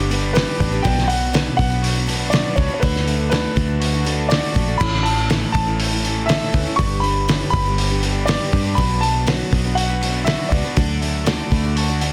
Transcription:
Already playing: G1 G2 D3 G3 B3 G4 B4 D5 C#6
0.00 B3 G4 B4
0.10 B3 D4 G4 B4, open hi-hat
0.33 G2 G3 B3 D4 G4 B4, snare, open hi-hat
0.59 A1 B3 D4 G4 B4 D5, kick, open hi-hat
0.72 B3 D4 G4 B4
0.83 B1 B2 F#3 B3 D4 F#4 B4 D5 G5, kick, open hi-hat
0.98 snare
1.08 F#3 F#5, open hi-hat
1.33 B2 F#3 B3 D4 F#4 B4 D5, snare, open hi-hat
1.57 B1 B3 D4 F#4 B4 F#5, kick, open hi-hat
1.70 B3 D4 F#4 B4
1.82 F#4, open hi-hat
1.94 B3 D4 F#4 B4
2.06 B3 D4 F#4 B4, open hi-hat
2.30 B2 F#3 B3 D4 F#4 B4 D5, snare, open hi-hat
2.55 C#2 B3 D4 F#4 B4 C#5, kick, open hi-hat
2.68 B3 D4 F#4 B4
2.74 C#5
2.80 D2 D3 A3 D4 F#4 A4 B4 D5, kick, open hi-hat
2.96 snare
3.06 A3, open hi-hat
3.30 D3 A3 D4 F#4 A4 B4 D5, snare, open hi-hat
3.56 D2 A3 D4 F#4 A4, kick, open hi-hat
3.67 D4 F#4 A4
3.80 F#4, open hi-hat
3.93 D4 F#4 A4
4.05 A3 D4 F#4 A4, open hi-hat
4.29 D3 A3 D4 F#4 A4 D5, snare, open hi-hat
4.54 A#1 A3 D4 F#4 A4 D5, kick, open hi-hat
4.68 D4 F#4 A4
4.78 A1 A2 E3 A3 C#4 E4 A4 C#5 B5, kick, crash
4.95 snare
5.03 E3 A5, open hi-hat
5.30 A2 E3 A3 C#4 E4 A4 B4, snare, open hi-hat
5.52 A1 A3 C#4 E4 A5, kick, open hi-hat
5.56 A4
5.66 A3 C#4 E4 A4
5.80 A4, open hi-hat
5.92 A3 C#4 E4 A4
6.04 A3 C#4 E4 A4, open hi-hat
6.26 A2 E3 A3 C#4 E5, open hi-hat
6.30 E4 A4, snare
6.53 D2 A3 C#4 E4 A4 B4, kick, open hi-hat
6.66 A3 C#4 E4 A4
6.76 G1 G2 D3 G3 D4 G4 B4 D5 C#6, kick, open hi-hat
6.80 B4
7.00 D3 B5, open hi-hat
7.28 G2 D3 G3 D4 G4 B4 C#5, snare, open hi-hat
7.50 G1 G3 B3 D4 B5, kick, open hi-hat
7.54 G4 B4
7.65 G3 D4 G4 B4
7.78 G4, open hi-hat
7.90 G3 D4 G4 B4
8.02 G3 D4 G4 B4, open hi-hat
8.25 G2 D3 G3 D4 G4 B4 D5, snare, open hi-hat
8.52 G2 G3 D4 G4 B4 D5, kick, open hi-hat
8.64 G3 D4 G4 B4
8.75 B1 B2 F#3 B3 D4 F#4 B4 D5 B5, kick, open hi-hat
9.01 F#3 A5, open hi-hat
9.27 B2 F#3 B3 D4 F#4 B4 C#5, snare, open hi-hat
9.51 B1 B3 D4 F#4 B4, kick, open hi-hat
9.64 B3 D4 F#4 B4
9.75 F#4 F#5, open hi-hat
9.89 B3 D4 F#4 B4
10.01 B3 D4 F#4 B4, open hi-hat
10.24 B2 F#3 B3 D4 F#4 B4 E5, snare, open hi-hat
10.49 C#2 B3 D4 F#4 B4 D5, kick, open hi-hat
10.53 B4
10.64 B3 D4 F#4 B4
10.76 D2 D3 F#3 A3 D4 F#4 A4 D5, kick, open hi-hat
11.01 A3, open hi-hat
11.26 D3 F#3 A3 D4 F#4 A4 D5, snare, open hi-hat
11.51 D2 A3 D4 F#4 D5 B5, kick, open hi-hat
11.64 A3 D4 F#4 D5
11.76 F#4 A5, open hi-hat
11.89 A3 D4 F#4 D5
12.01 A3 D4 F#4 D5 F#5, open hi-hat

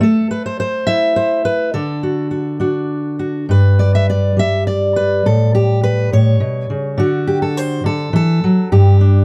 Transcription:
0.01 A3 A4
0.31 B4
0.46 C5
0.60 C5
0.87 E4 E5
1.16 C5
1.45 B4
1.74 D3 A4
2.03 F#4
2.31 F#4
2.60 D4 F#4
3.19 F#4
3.49 G2 B4
3.79 D5
3.95 E5
4.10 D5
4.37 G3 E5
4.67 D5
4.96 B4
5.26 A2 A4
5.55 G4
5.84 B4
6.12 A2 C#5
6.40 B2
6.70 C#3
6.98 D3 F#4
7.27 G4
7.42 A4
7.57 C5
7.84 D3 A4
8.13 E3 A4
8.44 F#3
8.72 G2 G4
9.01 D4

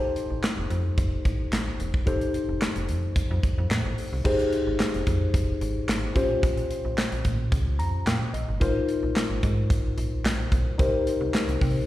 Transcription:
Already playing: D#4 G4 A4 C5
0.16 closed hi-hat
0.30 A1
0.43 snare, clap, closed hi-hat
0.57 F1
0.70 F2, closed hi-hat
0.98 F1, kick, closed hi-hat
1.25 A1, kick, closed hi-hat
1.52 A1, snare, clap, closed hi-hat
1.79 E1, closed hi-hat
1.94 kick
2.06 F1 D#4 G4 A4 C5, kick, closed hi-hat
2.21 closed hi-hat
2.34 closed hi-hat
2.49 F1
2.62 snare, clap, closed hi-hat
2.76 F1, closed hi-hat
2.89 F2, closed hi-hat
3.16 kick, closed hi-hat
3.31 F2
3.43 kick, closed hi-hat
3.58 F2
3.71 A2, snare, clap, closed hi-hat
3.86 A1
3.98 open hi-hat
4.13 C2
4.24 F1 D#4 G4 G#4 C5, kick, crash
4.39 closed hi-hat
4.53 closed hi-hat
4.67 G#1
4.80 snare, clap, closed hi-hat
4.94 F1, closed hi-hat
5.07 F2, kick, closed hi-hat
5.34 F1, kick, closed hi-hat
5.61 G#1, closed hi-hat
5.88 G#1, snare, clap, closed hi-hat
6.15 A#1 C#4 F4 G4 C5, kick, closed hi-hat
6.43 A#1, kick, closed hi-hat
6.57 closed hi-hat
6.71 closed hi-hat
6.85 A#1
6.98 snare, clap, closed hi-hat
7.12 A#1, closed hi-hat
7.25 A#2, kick, closed hi-hat
7.52 C#2, kick, closed hi-hat
7.79 F2 A#5, closed hi-hat
8.07 A#2 G5, snare, clap, closed hi-hat
8.33 A#1 D#5, closed hi-hat
8.48 G1
8.60 G#1 D#4 F4 A#4 C5, kick, closed hi-hat
8.89 closed hi-hat
9.03 A#1
9.16 snare, clap, closed hi-hat
9.30 G#1
9.43 G#2, kick, closed hi-hat
9.70 G#1, kick, closed hi-hat
9.98 A#1, closed hi-hat
10.25 A#1, snare, clap, closed hi-hat
10.52 B1, kick, closed hi-hat
10.78 C2 D#4 G4 A#4 C5, kick, closed hi-hat
11.07 closed hi-hat
11.21 C2
11.34 snare, clap, closed hi-hat
11.48 C2, closed hi-hat
11.61 C3, kick, open hi-hat

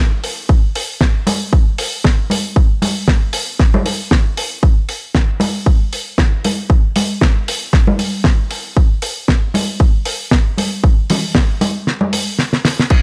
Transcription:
0.24 open hi-hat
0.49 kick
0.75 open hi-hat
1.01 kick, snare
1.27 open hi-hat, high conga
1.53 kick
1.78 open hi-hat
2.04 kick, snare
2.30 open hi-hat, high conga
2.56 kick
2.82 open hi-hat, high conga
3.08 kick, snare
3.33 open hi-hat
3.59 kick, snare
3.74 high conga
3.85 open hi-hat, high conga
4.11 kick, snare
4.37 open hi-hat
4.63 kick
4.89 open hi-hat
5.15 kick, snare
5.40 open hi-hat, high conga
5.66 kick
5.93 open hi-hat
6.18 kick, snare
6.44 open hi-hat, high conga
6.70 kick
6.96 open hi-hat, high conga
7.21 kick, snare
7.48 open hi-hat
7.73 kick, snare
7.87 high conga
7.99 open hi-hat, high conga
8.24 kick, snare
8.51 open hi-hat
8.77 kick
9.02 open hi-hat
9.28 kick, snare
9.54 open hi-hat, high conga
9.80 kick
10.05 open hi-hat
10.31 kick, snare
10.57 open hi-hat, high conga
10.84 kick
11.10 open hi-hat, high conga, low conga
11.35 kick, snare
11.61 open hi-hat, high conga
11.87 snare
12.01 high conga
12.13 open hi-hat, high conga
12.39 snare
12.53 snare
12.65 snare, open hi-hat
12.79 snare
12.90 kick, crash

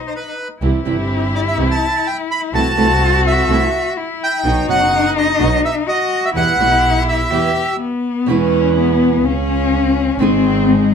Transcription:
Already playing: D#4
0.07 C5
0.16 B4
0.61 C2 C3 E3 G3 C4 E4 G4
0.85 G1 C3 E3 G3 C4 E4 G4
1.35 D5
1.48 E5
1.57 C2 C3 E3 G3 C4 E4 G4
1.71 A5
2.07 G5
2.31 B5
2.53 C2 C3 E3 A3 C4 E4 F#4 A4 A5
2.76 C2 C3 E3 A3 C4 E4 A4
3.27 E5
3.48 C2 C3 E3 A3 C4 E4 A4
3.97 E4
4.24 G5
4.44 B1 B2 F#3 B3 D#4 F#4
4.67 F#1 B2 F#3 B3 D#4 F#4 F#5
5.18 D#5
5.39 B1 B2 F#3 B3 D#4 F#4
5.65 E5
5.87 F#4 D#5
6.25 E5
6.35 E2 B2 E3 G3 B3 E4 G4 F#5
6.58 B1 B2 E3 G3 B3 E4 G4
7.09 E5
7.30 E2 B2 E3 G3 B3 E4 G4
7.80 B3
8.26 E2 B2 E3 G#3 B3 C#4 E4 G#4
8.77 B3
9.24 C#2 C#4 F4 G#4
10.19 G#1 D#3 G#3 C4 D#4 G#4
10.68 G#3

